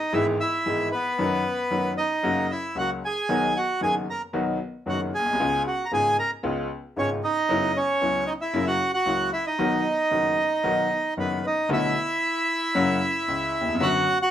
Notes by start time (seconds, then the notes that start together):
Already playing: D#4 D#5
0.13 G#1 G#2 E3 G#3 B3 E4 G#4 E5
0.40 E4 E5
0.66 G#1 G#2 E3 G#3 B3 G#4
0.92 B3 B4
1.18 F#2 D#3 F#3 B3 F#4
1.71 F#2 D#3 F#3 B3 F#4
1.97 D#4 D#5
2.23 F#2 C#3 F#3 A#3 F#4
2.51 E4 E5
2.75 C#2 C#3 F#3 A#3 F#4 F#5
2.80 F#4
3.05 G#4 G#5
3.29 B1 B2 D#3 F#3 B3 F#4
3.56 F#4 F#5
3.81 F#1 F#2 D#3 F#3 B3 F#4 G#4 G#5
4.10 A#4 A#5
4.33 B1 B2 D#3 F#3 B3 F#4
4.86 F#1 F#2 D#3 F#3 B3 F#4 F#5
5.14 G#4 G#5
5.19 A#1
5.26 B1
5.33 C2
5.39 C#2 C#3 G#3 B3 F4
5.67 F#4 F#5
5.85 A#5
5.91 G#1 G#2 C#3 G#3 B3 F4 G#4 G#5
6.19 A#4 A#5
6.43 C#2 C#3 G#3 B3 F4
6.96 G#1 G#2 C#3 G#3 B3 C#4 F4 C#5
7.24 D#4 D#5
7.49 F#2 C#3 F#3 B3 E4
7.77 C#4 C#5
8.01 C#2 C#3 F#3 B3 E4
8.27 D#4 D#5
8.41 E4 E5
8.53 F#2 C#3 F#3 A#3 E4
8.67 F#4 F#5
8.94 F#4 F#5
9.06 C#2 C#3 F#3 A#3 E4
9.33 E4 E5
9.47 D#4 D#5
9.59 B1 B2 D#3 F#3 B3 F#4
10.11 F#1 F#2 D#3 F#3 B3 F#4
10.64 B1 B2 D#3 F#3 B3 F#4
11.17 F#1 F#2 D#3 F#3 B3 F#4 B4
11.46 D#4 D#5
11.69 B1 B2 D3 A3 B3 E4 F#4
11.73 E5
12.75 F#2 C#3 F#3 A#3 F#4
13.28 C#2 C#3
13.61 D#2
13.67 E2
13.74 F2
13.80 F#2 D3 F#3 B3 F#4 F#5
14.22 F#4 F#5